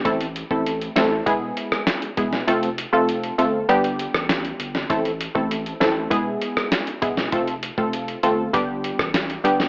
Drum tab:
HH |xxx-xxx-x-x-xxx-|xxx-xxx-xxx-xxx-|xxx-xxx-x-x-xxx-|xxx-xxx-x-x-xxx-|
SD |------o----ro--o|-----------ro--o|------o----ro--o|-----------ro--o|
BD |o--o----o-----o-|----------------|o--o----o-----o-|o--o----o--o----|